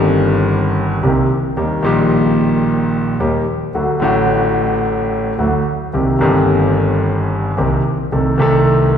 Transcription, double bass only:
0.00 0.96 G1 loud
1.03 1.26 C2 medium
1.57 1.80 D#2 medium
1.84 3.13 A#1 loud
3.20 3.43 D#2 medium
3.74 3.97 D2 medium
4.01 5.31 A1 loud
5.39 5.62 D2 medium
5.93 6.16 C2 medium
6.20 7.50 G1 loud
7.58 7.80 C2 medium
8.12 8.35 C2 medium
8.40 8.98 C2 medium

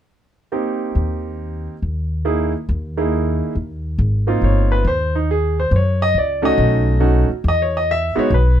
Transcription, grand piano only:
0.52 1.73 A#3 soft
0.52 1.73 C4 soft
0.52 1.74 D#4 soft
0.52 1.73 G4 medium
2.25 2.51 A#3 medium
2.25 2.51 D#4 soft
2.25 2.51 E4 soft
2.25 2.52 G#4 medium
2.97 3.52 A#3 medium
2.97 3.52 D#4 soft
2.97 3.53 E4 soft
2.97 3.53 G#4 medium
4.27 4.82 A#3 soft
4.27 4.82 C4 soft
4.27 4.82 D#4 soft
4.27 4.82 F4 medium
4.44 4.71 C#5 medium
4.72 4.85 B4 medium
4.87 5.14 C5 medium
5.15 5.29 D#4 medium
5.31 5.58 G#4 medium
5.60 5.70 C5 medium
5.72 5.75 C5 soft
5.76 6.02 C#5 medium
6.02 6.15 D#5 medium
6.18 6.44 D5 medium
6.42 6.98 A3 medium
6.42 6.98 C#4 medium
6.42 6.98 D#4 medium
6.42 6.98 F#4 medium
6.42 6.98 D#5 medium
7.00 7.27 A3 medium
7.00 7.27 C#4 soft
7.00 7.27 D#4 medium
7.00 7.27 F#4 medium
7.48 7.61 D#5 medium
7.62 7.75 C#5 medium
7.77 7.89 D#5 medium
7.91 8.17 E5 medium
8.15 8.29 G#3 medium
8.15 8.29 B3 medium
8.15 8.29 D#4 medium
8.15 8.29 F#4 medium
8.15 8.32 C#5 medium
8.34 8.60 B4 medium

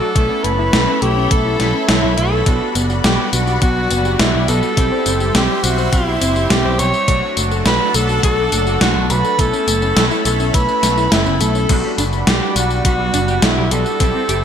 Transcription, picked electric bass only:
0.16 0.28 B1 medium
0.44 0.69 F#1 medium
0.73 0.85 B1 loud
1.02 1.26 B1 medium
1.31 1.55 B1 medium
1.60 1.72 B1 medium
1.89 2.01 B1 medium
2.03 2.15 B1 loud
2.18 2.42 B1 medium
2.75 2.99 F#1 medium
3.04 3.16 B1 loud
3.33 3.57 B1 medium
3.62 3.86 B1 loud
3.91 4.15 F#1 medium
4.20 4.32 B1 medium
4.34 4.46 B1 loud
4.48 4.61 B1 loud
4.77 4.89 B1 loud
5.06 5.30 F#1 medium
5.35 5.47 B1 loud
5.64 5.88 B1 loud
5.93 6.17 B1 loud
6.21 6.46 F#1 medium
6.50 6.62 B1 medium
6.65 6.77 B1 loud
6.79 6.91 B1 loud
7.08 7.20 B1 loud
7.37 7.61 F#1 medium
7.66 7.78 B1 loud
7.95 8.19 B1 loud
8.23 8.48 B1 loud
8.52 8.76 F#1 medium
8.81 8.93 B1 medium
8.95 9.08 B1 loud
9.10 9.22 B1 loud
9.39 9.51 B1 loud
9.68 9.92 F#1 medium
9.96 10.09 B1 loud
10.26 10.50 B1 loud
10.54 10.66 B1 loud
10.83 11.07 B1 medium
11.12 11.24 F#1 medium
11.26 11.38 F#1 medium
11.41 11.65 B1 loud
11.70 11.82 B1 loud
11.98 12.22 F#1 medium
12.27 12.39 B1 loud
12.56 12.80 B1 loud
12.85 13.09 B1 loud
13.14 13.38 F#1 medium
13.42 13.55 B1 loud
13.57 13.69 B1 loud
13.71 13.83 B1 loud
14.00 14.12 B1 loud
14.29 14.44 F#1 medium

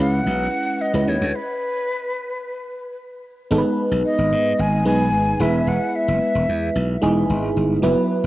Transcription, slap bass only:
0.00 0.20 C#2 medium
0.26 0.47 B1 medium
0.94 1.04 C#2 medium
1.07 1.18 D#2 medium
1.21 1.31 D2 medium
3.51 3.61 G#1 loud
3.91 4.02 B1 medium
4.18 4.33 G#1 medium
4.32 4.52 G#2 medium
4.59 4.86 G#1 loud
4.86 5.13 B1 medium
5.13 5.33 G#1 medium
5.40 5.60 E1 loud
5.67 5.77 E1 medium
6.08 6.18 F#1 medium
6.35 6.45 E1 medium
6.49 6.69 E2 loud
6.75 6.96 B1 medium
7.03 7.23 E1 medium
7.30 7.50 G#1 medium
7.57 7.77 G1 medium
7.83 7.93 F#1 loud

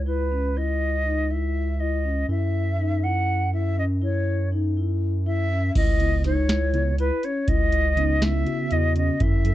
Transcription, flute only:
0.06 0.58 B4 medium
0.57 1.32 D#5 medium
1.30 1.81 E5 medium
1.79 2.29 D#5 medium
2.29 3.04 E5 medium
3.03 3.52 F#5 medium
3.53 3.76 E5 medium
3.78 3.84 D#5 medium
4.03 4.48 C#5 medium
5.26 5.72 E5 medium
5.76 6.22 D#5 medium
6.25 6.95 C#5 medium
6.99 7.25 B4 medium
7.24 7.49 C#5 medium
7.48 8.24 D#5 medium
8.22 8.73 E5 medium
8.72 8.96 D#5 medium
8.96 9.23 D#5 medium
9.21 9.55 E5 loud

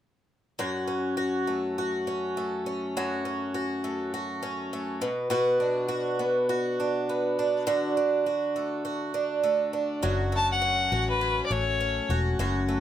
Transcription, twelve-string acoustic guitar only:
0.59 2.95 F#2 medium
0.59 1.17 F#4 medium
0.88 2.06 C#4 soft
1.17 1.78 F#4 medium
1.47 2.36 A3 soft
1.78 2.97 F#4 medium
2.07 2.65 C#4 soft
2.37 3.83 A3 soft
2.66 3.24 C#4 soft
2.97 5.03 F#2 medium
2.97 3.54 F#4 medium
3.25 4.41 C#4 soft
3.54 4.13 F#4 medium
3.84 4.72 A3 soft
4.14 5.31 F#4 medium
4.43 5.08 C#4 medium
4.73 5.09 A3 soft
5.01 5.29 B2 medium
5.30 7.66 B2 medium
5.30 5.88 F#4 medium
5.60 6.79 D4 soft
5.89 6.49 F#4 medium
6.19 7.08 B3 soft
6.49 7.67 F#4 medium
6.80 7.38 D4 soft
7.09 7.75 B3 soft
7.39 7.97 D4 medium
7.67 10.03 D3 medium
7.67 8.26 F#4 medium
7.97 9.13 D4 soft
8.26 8.84 F#4 medium
8.56 9.43 A3 soft
8.85 10.03 F#4 medium
9.14 9.72 D4 medium
9.43 10.32 A3 medium
9.73 10.10 D4 soft
10.03 12.38 F#2 medium
10.03 10.92 F#4 medium
10.32 11.49 A3 soft
10.62 11.20 C#4 medium
10.92 12.10 F#4 soft
11.21 11.79 C#4 soft
11.51 12.67 A3 medium
11.81 12.80 C#4 soft
12.10 12.40 F#4 medium
12.39 12.80 F#2 medium
12.39 12.80 F#4 medium
12.68 12.80 A3 soft

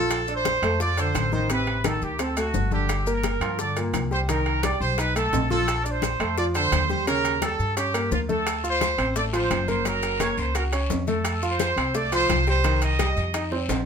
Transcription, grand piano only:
0.00 0.21 F3 medium
0.00 0.22 F4 medium
0.28 0.57 D4 medium
0.28 0.57 D5 medium
0.63 0.77 A3 medium
0.63 0.78 A4 medium
0.80 0.95 F3 medium
0.80 0.95 F4 medium
0.98 1.26 D3 medium
0.98 1.26 D4 medium
1.33 1.47 D#3 medium
1.33 1.47 D#4 medium
1.50 1.79 C3 medium
1.50 1.79 C4 medium
1.85 2.13 D#3 medium
1.85 2.14 D#4 medium
2.20 2.34 C4 medium
2.20 2.34 C5 medium
2.37 2.66 A3 medium
2.37 2.66 A4 medium
2.72 3.01 D3 medium
2.72 3.01 D4 medium
3.07 3.35 A#3 medium
3.07 3.36 A#4 medium
3.42 3.56 F3 medium
3.42 3.56 F4 medium
3.59 3.73 D3 medium
3.59 3.74 D4 medium
3.77 4.05 A#2 medium
3.77 4.05 A#3 medium
4.11 4.25 G3 medium
4.11 4.25 G4 medium
4.29 4.57 D#3 medium
4.29 4.57 D#4 medium
4.63 4.92 G3 medium
4.63 4.92 G4 medium
4.99 5.13 D#4 medium
4.99 5.13 D#5 medium
5.16 5.44 A3 medium
5.16 5.44 A4 medium
5.51 5.79 F3 medium
5.51 5.79 F4 medium
5.85 6.14 D4 medium
5.85 6.14 D5 medium
6.20 6.34 A3 medium
6.20 6.35 A4 medium
6.38 6.52 F3 medium
6.38 6.52 F4 medium
6.55 6.84 D3 medium
6.55 6.84 D4 medium
6.89 7.04 G3 medium
6.89 7.04 G4 medium
7.07 7.36 C#3 medium
7.07 7.36 C#4 medium
7.42 7.71 G3 medium
7.42 7.71 G4 medium
7.77 7.91 C#4 medium
7.77 7.91 C#5 medium
7.94 8.23 A#3 medium
7.94 8.23 A#4 medium
8.29 8.58 A3 medium
8.29 8.58 A4 medium
8.64 8.92 F4 medium
8.64 8.93 F5 medium
8.98 9.13 C4 medium
8.98 9.13 C5 medium
9.16 9.30 A3 medium
9.16 9.30 A4 medium
9.33 9.62 F3 medium
9.33 9.62 F4 medium
9.68 9.82 A#3 medium
9.68 9.83 A#4 medium
9.85 10.14 F#3 medium
9.85 10.14 F#4 medium
10.20 10.49 A#3 medium
10.20 10.49 A#4 medium
10.56 10.70 F#4 medium
10.56 10.70 F#5 medium
10.73 11.02 C#4 medium
10.73 11.02 C#5 medium
11.08 11.36 A3 medium
11.08 11.37 A4 medium
11.43 11.71 F4 medium
11.43 11.71 F5 medium
11.77 11.92 C4 medium
11.77 11.92 C5 medium
11.95 12.09 A3 medium
11.95 12.09 A4 medium
12.12 12.41 F3 medium
12.12 12.41 F4 medium
12.47 12.61 G3 medium
12.47 12.62 G4 medium
12.64 12.93 D#3 medium
12.64 12.93 D#4 medium
12.99 13.28 G3 medium
12.99 13.28 G4 medium
13.34 13.48 D#4 medium
13.34 13.49 D#5 medium
13.52 13.80 C4 medium
13.52 13.81 C5 medium

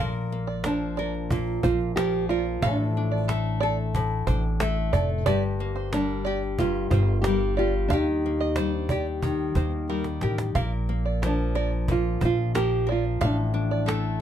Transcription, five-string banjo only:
0.00 0.13 F5 medium
0.47 0.63 D5 medium
0.64 0.96 A#4 medium
0.97 1.13 D5 medium
1.63 1.79 C5 medium
1.97 2.12 A#4 medium
2.29 2.45 D5 medium
2.63 2.78 F5 loud
3.12 3.27 D5 medium
3.28 3.60 A4 medium
3.60 3.77 D5 medium
4.27 4.43 C5 medium
4.60 4.76 A4 medium
4.93 5.09 D5 medium
5.26 5.42 D5 loud
5.76 5.92 C5 medium
5.93 6.24 A#4 medium
6.25 6.41 D5 medium
6.92 7.08 C5 medium
7.24 7.40 A#4 medium
7.57 7.73 D5 medium
7.90 8.06 F5 loud
8.41 8.56 D#5 medium
8.57 8.88 C5 medium
8.90 9.06 D5 medium
9.56 9.72 C5 medium
9.89 10.05 A#4 medium
10.23 10.38 A#4 medium
10.55 10.71 F5 medium
11.05 11.21 D5 medium
11.22 11.53 A#4 medium
11.55 11.71 D5 medium
12.21 12.37 C5 medium
12.55 12.70 A#4 medium
12.89 13.04 D5 medium
13.21 13.37 F5 loud
13.71 13.87 D5 medium
13.88 14.19 A4 medium

